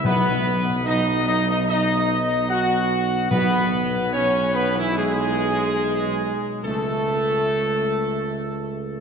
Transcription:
0.04 B1 B2 B3 B4
0.85 D#4 D#5
1.26 D#4 D#5
1.46 D#4 D#5
1.67 D#4 D#5
2.49 F#4 F#5
3.31 B1 B2 B3 B4
4.12 C#4 C#5
4.53 B3 B4
4.75 E3 E4
4.96 G#3 G#4
6.63 C#2 A3 A4

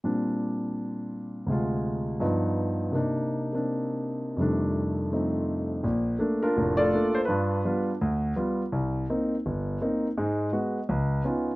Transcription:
0.04 A#2 G3 C4 D4
1.46 D2 C3 G#3
1.51 F4
2.20 G2 F3 B3 D#4
2.91 C3 A#3 D4
2.96 D#4
3.53 A#3 C4 D4
4.37 F2 C3 D#3 G3
4.41 A3 D4
5.12 F3 A3 C4 D#4
5.84 A#1
6.19 A3 A#3 D4
6.43 D4 F4 A#4
6.57 F1 A2
6.77 F4 A4 D5
6.94 A3 A#3 D4
7.15 C5
7.25 G2 D4 F4 B4
7.65 G3 B3 F4
8.01 D2
8.36 G3 B3 F4
8.72 C2
9.10 A#3 C4 D#4
9.46 G1
9.82 A#3 C4 D#4
10.17 G#2 G#3
10.52 G#3 B3 F#4
10.89 C#2
11.25 B3 C#4 D#4 F4

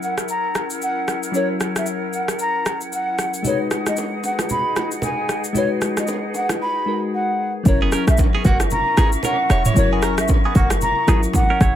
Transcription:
Already playing: F#3 C#4 E4 A#4 C#5 F#5
0.03 F#5, shaker
0.18 cross-stick, shaker
0.28 A#5, shaker
0.55 cross-stick, shaker
0.70 shaker
0.82 F#5, shaker
1.08 cross-stick, shaker
1.23 shaker
1.32 F#3 C#4 E4 C#5, shaker
1.37 A#4
1.60 cross-stick, shaker
1.76 E5, cross-stick, shaker
1.86 shaker
2.13 F#5, shaker
2.28 cross-stick, shaker
2.39 A#5, shaker
2.66 cross-stick, shaker
2.81 shaker
2.93 F#5, shaker
3.19 cross-stick, shaker
3.34 shaker
3.42 G#3 D#4 F#4 G#4 C#5 D#5, low conga, shaker
3.47 B4
3.71 cross-stick, low bongo, shaker
3.86 D#5, cross-stick, low bongo, shaker
3.97 high bongo, shaker
4.24 F#5, high bongo, shaker
4.39 cross-stick, low bongo, shaker
4.49 B5, low conga, shaker
4.76 cross-stick, low bongo, shaker
4.91 shaker
5.02 G#5, high bongo, low conga, shaker
5.29 cross-stick, shaker
5.44 shaker
5.53 G#3 D#4 F#4 C#5, low conga, shaker
5.58 B4
5.81 cross-stick, low bongo, shaker
5.97 D#5, cross-stick, low bongo, shaker
6.07 high bongo, shaker
6.34 F#5, high bongo, shaker
6.49 cross-stick, low bongo, shaker
6.62 B5
6.86 G#3 D#4 F#4 A#4
7.14 F#5
7.63 F#1 F#3 C#4 E4 A#4 C#5 E5 F#5 C#6, kick, low conga, shaker
7.68 A#4
7.82 B3 G#4
7.92 C#4 A#4, cross-stick, shaker
8.07 A#1 E5, cross-stick, shaker
8.18 kick, high bongo, shaker
8.35 B3 G#4
8.45 F#1 A#3 F#4 F#5, kick, high bongo, shaker
8.60 cross-stick, low bongo, shaker
8.70 A#5, low conga, shaker
8.97 G#1 B3 G#4, cross-stick, low bongo, shaker
9.12 shaker
9.23 C#4 A#4 F#5, high bongo, low conga, shaker
9.50 E1 E4 C#5, cross-stick, shaker
9.65 E4 C#5, mid tom, shaker
9.74 F#1 F#3 C#4 E4 C#5, low conga, shaker
9.79 A#4
9.93 B3 G#4
10.02 C#4 A#4, cross-stick, shaker
10.18 A#1 E5, cross-stick, shaker
10.28 kick, high bongo, shaker
10.45 B3 G#4
10.55 F#1 A#3 F#4 F#5, kick, high bongo, shaker
10.70 cross-stick, low bongo, shaker
10.81 A#5, low conga, shaker
11.07 G#1 F#3 B3 C#4 E4 G#4 A#4, cross-stick, low bongo, shaker
11.23 shaker
11.33 F#5, kick, high bongo, low conga, shaker
11.50 C#4 A#4
11.61 F#1 E4 C#5, kick, cross-stick, shaker

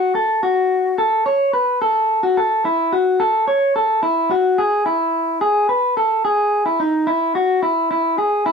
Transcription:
Already playing: F#4
0.15 A4
0.43 F#4
0.98 A4
1.26 C#5
1.53 B4
1.82 A4
2.23 F#4
2.37 A4
2.65 E4
2.93 F#4
3.20 A4
3.48 C#5
3.76 A4
4.03 E4
4.31 F#4
4.58 G#4
4.86 E4
5.41 G#4
5.69 B4
5.97 A4
6.25 G#4
6.66 E4
6.80 D#4
7.07 E4
7.35 F#4
7.63 E4
7.91 E4
8.18 G#4
8.46 E4

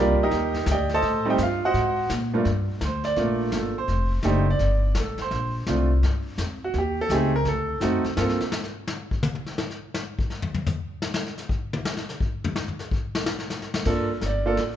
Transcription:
Already playing: C2 G3 A#3 D4 F4
0.00 G4 A#4 D5
0.20 D#4 G4 A#4 D#5, muted upright bass stroke
0.31 D#2, brush sweep, kick, snare
0.54 snare
0.66 D2, kick, snare, hi-hat pedal
0.71 G4 D5 D#5 G5
0.89 snare
0.94 A4 C5 D#5 A5
1.02 A2, brush sweep, kick, snare
1.25 G3 A3 C4 D#4
1.30 G4 C5 D#5 G5
1.38 G2, kick, snare, hi-hat pedal
1.43 F4 F5
1.65 F#4 C5 D#5 F#5
1.74 G#2, brush sweep, kick, snare
2.10 A#2, kick, snare, hi-hat pedal
2.34 G2 A3 A#3 D4 F4
2.45 G2, brush sweep, kick, snare
2.81 D2, kick, snare, hi-hat pedal
2.85 C5
3.04 D5, snare
3.16 A#1 A3 A#3 D4 F4, brush sweep, kick, snare
3.52 G1, kick, snare, hi-hat pedal
3.56 A4
3.78 C5
3.88 F1, brush sweep, kick, snare
4.23 F#1 A3 D4 D#4 G4, kick, snare, hi-hat pedal
4.27 C5
4.50 D5
4.59 G1, brush sweep, kick, snare
4.95 A1, kick, snare, hi-hat pedal
5.00 A4
5.18 C5, muted upright bass stroke, snare
5.31 A#1, brush sweep, kick, snare
5.66 C2 A3 C4 D4 F4, kick, snare, hi-hat pedal
6.03 G2, brush sweep, kick, snare
6.38 F2, kick, snare, hi-hat pedal
6.64 F#4
6.74 D#2, brush sweep, kick, snare
6.78 G4
7.01 A4
7.09 C#2 A3 C4 D#4 G4, kick, snare, hi-hat pedal
7.14 G#4
7.36 A#4
7.45 D2 A4, brush sweep, kick, snare
7.80 F#2 A3 C4 D#4 F#4, kick, snare, hi-hat pedal
8.04 muted upright bass stroke, snare
8.17 G2 A#3 C4 F4 A4, snare
8.29 snare
8.41 snare
8.52 snare, hi-hat pedal
8.63 snare
8.87 snare
9.11 kick
9.23 hi-hat pedal, high tom
9.35 high tom
9.46 snare
9.58 snare
9.70 snare
9.94 snare, hi-hat pedal
10.19 kick
10.30 snare
10.42 floor tom
10.54 floor tom
10.66 floor tom, hi-hat pedal
11.02 snare
11.14 snare
11.26 snare
11.38 snare, hi-hat pedal
11.49 kick
11.73 high tom
11.85 snare
11.97 snare
12.09 snare, hi-hat pedal
12.20 kick
12.44 floor tom
12.56 snare
12.68 floor tom
12.79 snare, hi-hat pedal
12.91 kick
13.15 snare
13.26 snare
13.39 snare
13.50 snare, hi-hat pedal
13.62 snare
13.74 snare
13.85 G2 A#3 D4 F4 A4, brush sweep, kick, snare, crash
14.21 G1, kick, snare, hi-hat pedal
14.26 D5
14.46 A#3 D4 F4 A4
14.57 A1, brush sweep, kick, snare

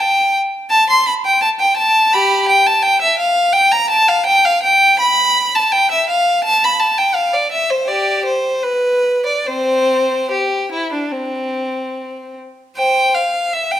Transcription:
0.00 G5
0.70 A5
0.90 C6
1.07 B5
1.25 G5
1.42 A5
1.60 G5
1.77 A5
2.12 G4 B5
2.48 G5
2.66 A5
2.83 G5
3.01 E5
3.19 F5
3.53 G5
3.72 A#5
3.90 A5
4.08 F5
4.26 G5
4.45 F5
4.63 G5
4.99 B5
5.55 A5
5.72 G5
5.91 E5
6.09 F5
6.44 A5
6.64 B5
6.79 A5
6.98 G5
7.15 F5
7.33 D5
7.51 E5
7.70 C5
7.87 G4 D5
8.25 C5
8.63 B4
9.26 D5
9.46 C4 C5
10.31 G4
10.72 E4
10.92 D4
11.12 C4
12.77 C5 G5
13.14 F5
13.53 E5
13.71 G5

